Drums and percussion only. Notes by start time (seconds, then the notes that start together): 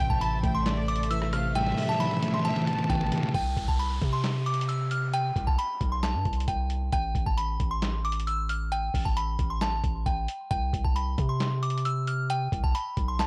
0.10 kick
0.21 closed hi-hat
0.43 kick, closed hi-hat
0.66 snare, clap, closed hi-hat
0.88 closed hi-hat
0.96 closed hi-hat
1.03 closed hi-hat
1.11 closed hi-hat
1.22 cross-stick
1.33 cross-stick, closed hi-hat
1.55 snare, closed hi-hat
1.61 snare
1.67 snare
1.72 snare
1.78 snare, open hi-hat
1.83 snare
1.89 snare
1.94 snare
2.00 snare, closed hi-hat
2.06 snare
2.11 snare
2.17 snare
2.23 snare, closed hi-hat
2.28 snare
2.34 snare
2.39 snare
2.45 snare, closed hi-hat
2.51 snare
2.56 snare
2.62 snare
2.67 snare, closed hi-hat
2.73 snare
2.79 snare
2.84 snare
2.90 kick, snare, closed hi-hat
2.95 snare
3.01 snare
3.06 snare
3.12 snare, closed hi-hat
3.18 snare
3.23 snare
3.29 snare
3.34 kick, closed hi-hat
3.57 kick, closed hi-hat
3.68 kick
3.79 closed hi-hat
4.02 kick, closed hi-hat
4.24 snare, clap, closed hi-hat
4.46 closed hi-hat
4.54 closed hi-hat
4.61 closed hi-hat
4.69 closed hi-hat
4.91 closed hi-hat
5.13 closed hi-hat
5.36 kick, closed hi-hat
5.47 kick
5.59 closed hi-hat
5.81 kick, closed hi-hat
6.03 snare, clap, closed hi-hat
6.25 kick, closed hi-hat
6.33 closed hi-hat
6.40 closed hi-hat
6.48 kick, closed hi-hat
6.70 closed hi-hat
6.92 kick, closed hi-hat
7.15 kick, closed hi-hat
7.26 kick
7.38 closed hi-hat
7.60 kick, closed hi-hat
7.82 snare, clap, closed hi-hat
8.05 closed hi-hat
8.12 closed hi-hat
8.20 closed hi-hat
8.27 closed hi-hat
8.49 closed hi-hat
8.72 closed hi-hat
8.94 kick, open hi-hat
9.05 kick
9.17 closed hi-hat
9.39 kick, closed hi-hat
9.61 snare, clap, closed hi-hat
9.84 kick, closed hi-hat
10.06 kick, closed hi-hat
10.28 closed hi-hat
10.51 kick, closed hi-hat
10.73 kick, closed hi-hat
10.84 kick
10.96 closed hi-hat
11.18 kick, closed hi-hat
11.40 snare, clap, closed hi-hat
11.63 closed hi-hat
11.70 closed hi-hat
11.78 closed hi-hat
11.85 closed hi-hat
12.07 closed hi-hat
12.30 closed hi-hat
12.52 kick, closed hi-hat
12.64 kick
12.75 closed hi-hat
12.97 kick, closed hi-hat
13.19 snare, clap, closed hi-hat